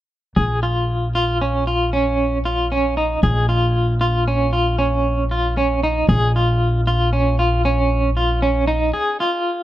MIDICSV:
0, 0, Header, 1, 3, 480
1, 0, Start_track
1, 0, Key_signature, -5, "minor"
1, 0, Tempo, 519481
1, 341, Time_signature, 11, 3, 24, 8
1, 8898, End_track
2, 0, Start_track
2, 0, Title_t, "Clean electric guitar"
2, 0, Program_c, 0, 27
2, 336, Note_on_c, 0, 68, 59
2, 544, Note_off_c, 0, 68, 0
2, 581, Note_on_c, 0, 65, 48
2, 993, Note_off_c, 0, 65, 0
2, 1064, Note_on_c, 0, 65, 59
2, 1269, Note_off_c, 0, 65, 0
2, 1307, Note_on_c, 0, 61, 52
2, 1511, Note_off_c, 0, 61, 0
2, 1545, Note_on_c, 0, 65, 57
2, 1750, Note_off_c, 0, 65, 0
2, 1784, Note_on_c, 0, 61, 60
2, 2195, Note_off_c, 0, 61, 0
2, 2268, Note_on_c, 0, 65, 57
2, 2472, Note_off_c, 0, 65, 0
2, 2511, Note_on_c, 0, 61, 61
2, 2713, Note_off_c, 0, 61, 0
2, 2745, Note_on_c, 0, 63, 54
2, 2950, Note_off_c, 0, 63, 0
2, 2988, Note_on_c, 0, 68, 61
2, 3192, Note_off_c, 0, 68, 0
2, 3224, Note_on_c, 0, 65, 52
2, 3636, Note_off_c, 0, 65, 0
2, 3704, Note_on_c, 0, 65, 60
2, 3910, Note_off_c, 0, 65, 0
2, 3951, Note_on_c, 0, 61, 53
2, 4154, Note_off_c, 0, 61, 0
2, 4183, Note_on_c, 0, 65, 54
2, 4390, Note_off_c, 0, 65, 0
2, 4422, Note_on_c, 0, 61, 58
2, 4835, Note_off_c, 0, 61, 0
2, 4909, Note_on_c, 0, 65, 56
2, 5113, Note_off_c, 0, 65, 0
2, 5149, Note_on_c, 0, 61, 67
2, 5353, Note_off_c, 0, 61, 0
2, 5391, Note_on_c, 0, 63, 55
2, 5594, Note_off_c, 0, 63, 0
2, 5627, Note_on_c, 0, 68, 69
2, 5832, Note_off_c, 0, 68, 0
2, 5876, Note_on_c, 0, 65, 55
2, 6283, Note_off_c, 0, 65, 0
2, 6351, Note_on_c, 0, 65, 62
2, 6554, Note_off_c, 0, 65, 0
2, 6586, Note_on_c, 0, 61, 53
2, 6791, Note_off_c, 0, 61, 0
2, 6829, Note_on_c, 0, 65, 62
2, 7033, Note_off_c, 0, 65, 0
2, 7070, Note_on_c, 0, 61, 65
2, 7479, Note_off_c, 0, 61, 0
2, 7546, Note_on_c, 0, 65, 57
2, 7751, Note_off_c, 0, 65, 0
2, 7783, Note_on_c, 0, 61, 58
2, 7990, Note_off_c, 0, 61, 0
2, 8015, Note_on_c, 0, 63, 57
2, 8225, Note_off_c, 0, 63, 0
2, 8256, Note_on_c, 0, 68, 71
2, 8465, Note_off_c, 0, 68, 0
2, 8503, Note_on_c, 0, 65, 54
2, 8898, Note_off_c, 0, 65, 0
2, 8898, End_track
3, 0, Start_track
3, 0, Title_t, "Upright bass"
3, 0, Program_c, 1, 32
3, 338, Note_on_c, 1, 34, 52
3, 2945, Note_off_c, 1, 34, 0
3, 2983, Note_on_c, 1, 34, 60
3, 5587, Note_off_c, 1, 34, 0
3, 5623, Note_on_c, 1, 34, 60
3, 8226, Note_off_c, 1, 34, 0
3, 8898, End_track
0, 0, End_of_file